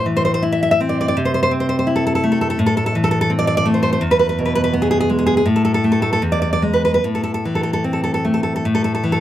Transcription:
0.00 1.11 A2 soft
0.06 1.16 E3 soft
0.17 0.24 C5 medium
0.25 0.33 C5 medium
0.34 0.42 C5 medium
0.42 1.16 E4 soft
0.52 0.61 E5 medium
0.63 0.70 E5 medium
0.71 0.79 E5 medium
0.80 1.16 C4 soft
0.89 0.98 D5 soft
1.01 1.07 D5 medium
1.08 1.16 D5 medium
1.17 2.55 C3 soft
1.25 1.33 C5 soft
1.34 1.41 C5 medium
1.43 1.51 C5 medium
1.51 2.59 C4 soft
1.60 1.68 C5 soft
1.69 1.78 C5 medium
1.79 1.87 C5 medium
1.87 2.59 E4 soft
1.96 2.05 A4 soft
2.07 2.14 A4 soft
2.15 2.23 A4 soft
2.24 2.59 A3 soft
2.32 2.40 A4 soft
2.41 2.49 A4 soft
2.50 2.59 A4 medium
2.59 3.98 A2 soft
2.66 2.76 A4 medium
2.77 2.85 A4 medium
2.86 2.95 A4 medium
2.95 4.02 E3 soft
3.04 3.10 A4 medium
3.11 3.20 A4 medium
3.21 3.30 A4 medium
3.30 4.02 C4 soft
3.39 3.46 D5 medium
3.47 3.56 D5 medium
3.57 3.66 D5 medium
3.65 4.02 A3 soft
3.74 3.81 C5 soft
3.83 3.91 C5 medium
3.93 4.02 C5 soft
4.01 5.41 E2 soft
4.11 4.18 B4 medium
4.19 4.28 B4 medium
4.29 4.38 B4 medium
4.39 5.45 B2 soft
4.46 4.54 B4 medium
4.55 4.63 B4 medium
4.64 4.73 B4 medium
4.73 5.45 B3 soft
4.82 4.90 G#4 medium
4.91 4.99 G#4 medium
5.00 5.09 G#4 medium
5.09 5.45 G#3 soft
5.19 5.25 G#4 soft
5.26 5.36 G#4 medium
5.37 5.46 G#4 medium
5.46 6.18 A2 medium
5.56 5.64 A4 soft
5.65 5.73 A4 medium
5.74 5.83 A4 medium
5.84 6.18 A3 soft
5.92 6.01 A4 medium
6.02 6.11 A4 medium
6.13 6.21 A4 medium
6.22 7.00 E2 soft
6.32 6.41 D5 medium
6.42 6.51 D5 medium
6.53 6.62 D5 medium
6.62 6.98 G#3 soft
6.74 6.82 B4 soft
6.85 6.93 B4 soft
6.94 7.03 B4 medium
7.04 8.62 A2 soft
7.15 7.22 A4 soft
7.24 7.33 A4 soft
7.34 7.43 A4 soft
7.45 8.66 E3 soft
7.55 7.62 A4 soft
7.63 7.72 A4 soft
7.73 7.83 A4 soft
7.84 8.65 C4 soft
7.93 8.02 A4 soft
8.04 8.13 A4 soft
8.14 8.24 A4 soft
8.25 8.64 A3 soft
8.34 8.42 A4 soft
8.43 8.54 A4 soft
8.56 8.65 A4 soft
8.65 9.20 A2 soft
8.75 8.83 A4 soft
8.84 8.93 A4 soft
8.95 9.03 A4 soft
9.04 9.20 E3 soft
9.12 9.20 A4 soft

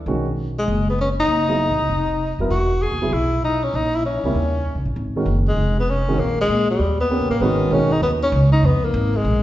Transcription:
0.06 0.64 B1 medium
0.06 0.24 D#3 soft
0.06 0.25 G#3 soft
0.06 0.25 C#4 soft
0.06 0.25 F#4 medium
0.59 0.86 G#3 medium
0.68 1.26 F#1 medium
0.90 0.99 B3 medium
1.01 1.09 C#4 medium
1.20 2.37 D#4 medium
1.28 1.66 F#1 medium
1.49 1.59 F#3 soft
1.49 1.59 B3 soft
1.49 1.59 E4 soft
1.49 1.59 G#4 medium
1.69 1.79 A1 medium
1.79 1.89 C2 medium
1.89 2.36 F1 medium
2.39 2.50 F1 medium
2.39 2.50 F#3 medium
2.39 2.50 B3 soft
2.39 2.51 E4 soft
2.39 2.51 A#4 medium
2.50 2.89 E1 medium
2.50 2.84 F#4 medium
2.83 3.15 G#4 medium
2.92 3.01 F#1 medium
3.01 3.11 F1 medium
3.01 3.11 F#3 medium
3.01 3.11 B3 soft
3.01 3.12 E4 soft
3.01 3.12 G#4 medium
3.12 3.70 B1 medium
3.12 3.43 E4 medium
3.44 3.65 D#4 medium
3.63 3.77 C#4 medium
3.74 4.20 A#1 medium
3.74 3.97 D#4 medium
3.96 4.05 E4 medium
4.06 4.81 C#4 medium
4.23 4.34 C#2 medium
4.23 4.34 G3 medium
4.23 4.35 A#3 soft
4.23 4.35 C#4 soft
4.23 4.35 E4 medium
4.34 4.73 D#2 medium
4.75 4.85 C#2 medium
4.85 4.95 A1 medium
4.96 5.25 G#1 medium
5.16 5.26 D#3 medium
5.16 5.26 G#3 soft
5.16 5.26 C#4 soft
5.16 5.26 F#4 medium
5.26 5.55 F#1 medium
5.48 5.76 G#3 medium
5.56 6.15 F1 medium
5.79 5.91 B3 medium
5.90 6.21 C#4 medium
6.08 6.18 D#3 medium
6.08 6.18 G#3 soft
6.08 6.18 C#4 medium
6.08 6.18 F#4 medium
6.17 6.46 A#1 medium
6.17 6.38 A#3 medium
6.41 6.68 G#3 medium
6.48 6.77 A#2 medium
6.70 6.98 G3 medium
6.79 7.18 D#2 medium
7.01 7.29 B3 medium
7.11 7.41 A#3 medium
7.11 7.42 B3 medium
7.11 7.40 C#4 soft
7.11 7.42 G4 medium
7.20 7.29 C#2 medium
7.30 7.40 A1 medium
7.30 7.43 A#3 medium
7.40 7.70 G#1 medium
7.40 7.70 D#3 medium
7.40 7.70 G#3 medium
7.40 7.74 B3 medium
7.40 7.71 C#4 medium
7.40 7.71 F#4 medium
7.70 8.01 B1 medium
7.70 7.89 D#3 medium
7.70 7.89 G#3 medium
7.70 7.89 C#4 medium
7.70 7.94 C#4 medium
7.70 7.90 F#4 medium
7.92 8.02 D#4 medium
8.01 8.32 D#2 medium
8.01 8.11 B3 medium
8.23 8.51 C#4 medium
8.32 8.62 C#2 medium
8.52 8.67 D#4 medium
8.62 8.93 F2 medium
8.62 8.86 B3 medium
8.85 9.17 A#3 medium
8.94 9.24 G#1 loud
9.16 9.43 G#3 medium
9.24 9.43 A#1 medium

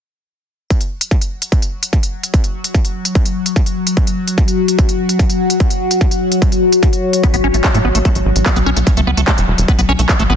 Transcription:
0.70 10.36 F#3 medium
0.70 10.36 F#4 medium
0.70 kick loud
0.70 closed hi-hat medium
0.81 closed hi-hat medium
1.01 closed hi-hat medium
1.11 kick loud
1.11 closed hi-hat medium
1.21 closed hi-hat medium
1.42 closed hi-hat medium
1.52 kick loud
1.52 closed hi-hat medium
1.62 closed hi-hat medium
1.83 closed hi-hat medium
1.93 kick loud
1.93 closed hi-hat medium
2.03 closed hi-hat medium
2.23 closed hi-hat medium
2.34 kick loud
2.34 closed hi-hat medium
2.44 closed hi-hat medium
2.64 closed hi-hat medium
2.74 kick loud
2.74 closed hi-hat medium
2.85 closed hi-hat medium
3.05 closed hi-hat medium
3.15 kick loud
3.15 closed hi-hat medium
3.25 closed hi-hat medium
3.46 closed hi-hat medium
3.56 kick loud
3.56 closed hi-hat medium
3.66 closed hi-hat medium
3.87 closed hi-hat medium
3.97 kick loud
3.97 closed hi-hat medium
4.07 closed hi-hat medium
4.28 closed hi-hat medium
4.38 kick loud
4.38 closed hi-hat medium
4.48 closed hi-hat medium
4.68 closed hi-hat medium
4.79 kick loud
4.79 closed hi-hat medium
4.89 closed hi-hat medium
5.09 closed hi-hat medium
5.19 kick loud
5.19 closed hi-hat medium
5.30 closed hi-hat medium
5.50 closed hi-hat medium
5.60 kick loud
5.60 closed hi-hat medium
5.70 closed hi-hat medium
5.91 closed hi-hat medium
6.01 kick loud
6.01 closed hi-hat medium
6.11 closed hi-hat medium
6.32 closed hi-hat medium
6.42 kick loud
6.42 closed hi-hat medium
6.52 closed hi-hat medium
6.72 closed hi-hat medium
6.83 kick loud
6.83 closed hi-hat medium
6.93 closed hi-hat medium
7.13 closed hi-hat medium
7.23 7.27 B3 medium
7.23 kick loud
7.23 closed hi-hat medium
7.34 7.41 A1 medium
7.34 7.36 B3 medium
7.34 closed hi-hat medium
7.44 7.51 A1 loud
7.44 7.48 C#4 loud
7.54 7.61 A1 medium
7.54 7.56 A3 medium
7.54 closed hi-hat medium
7.64 kick loud
7.64 clap loud
7.64 closed hi-hat medium
7.75 7.82 A2 medium
7.75 7.78 A3 medium
7.75 closed hi-hat medium
7.85 7.92 A1 loud
7.85 7.89 B3 medium
7.95 8.02 A1 medium
7.95 7.99 A3 medium
7.95 closed hi-hat medium
8.05 8.09 A3 medium
8.05 kick loud
8.05 closed hi-hat medium
8.15 8.22 A1 medium
8.15 closed hi-hat medium
8.26 8.33 A1 loud
8.36 8.43 A1 medium
8.36 closed hi-hat medium
8.46 8.50 B3 medium
8.46 kick loud
8.46 clap loud
8.46 closed hi-hat medium
8.56 8.63 B1 medium
8.56 8.59 B3 medium
8.56 closed hi-hat medium
8.66 8.73 B1 loud
8.66 8.70 C#4 loud
8.77 8.84 B1 medium
8.77 8.79 A3 medium
8.77 closed hi-hat medium
8.87 kick loud
8.87 closed hi-hat medium
8.97 9.04 C#2 medium
8.97 9.01 A3 medium
8.97 closed hi-hat medium
9.07 9.14 C#2 loud
9.07 9.11 B3 medium
9.17 9.24 C#2 medium
9.17 9.21 A3 medium
9.17 closed hi-hat medium
9.28 9.31 A3 medium
9.28 kick loud
9.28 clap loud
9.28 closed hi-hat medium
9.38 9.45 E1 medium
9.38 closed hi-hat medium
9.48 9.55 E1 loud
9.58 9.65 E1 medium
9.58 closed hi-hat medium
9.68 9.72 B3 medium
9.68 kick loud
9.68 closed hi-hat medium
9.79 9.86 B1 medium
9.79 9.81 B3 medium
9.79 closed hi-hat medium
9.89 9.96 B1 loud
9.89 9.93 C#4 loud
9.99 10.06 B1 medium
9.99 10.01 A3 medium
9.99 closed hi-hat medium
10.09 kick loud
10.09 clap loud
10.09 closed hi-hat medium
10.19 10.26 A1 medium
10.19 10.23 A3 medium
10.19 closed hi-hat medium
10.30 10.36 A1 loud
10.30 10.34 B3 medium

